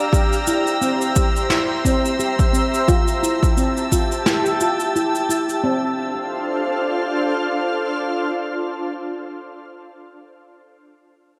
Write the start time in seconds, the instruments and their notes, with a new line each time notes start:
Already playing: ambient pad G4 A#5, synth texture E6
0.13 steel pan G4, ambient pad C5 E5, kick, cabasa
0.33 cabasa
0.47 steel pan E4, cabasa
0.67 cabasa
0.81 steel pan C4, cabasa
1.02 cabasa
1.16 steel pan G4, kick, cabasa
1.36 cabasa
1.50 steel pan E4, snare, cabasa
1.85 steel pan C4, kick, cabasa
2.05 cabasa
2.19 steel pan G4, cabasa
2.39 kick, cabasa
2.53 steel pan C4, cabasa
2.74 cabasa
2.88 steel pan F4, ambient pad G4 A5, kick, cabasa
3.08 cabasa
3.23 steel pan E4, cabasa
3.43 kick, cabasa
3.57 steel pan C4, cabasa
3.77 cabasa
3.92 steel pan F4, kick, cabasa
4.12 cabasa
4.26 steel pan E4, snare, cabasa
4.46 cabasa
4.61 steel pan F4, cabasa
4.80 cabasa
4.96 steel pan E4, cabasa
5.15 cabasa
5.29 steel pan E4, cabasa
5.49 cabasa
5.64 steel pan C4, ambient pad D4 F4 A4 C5 F5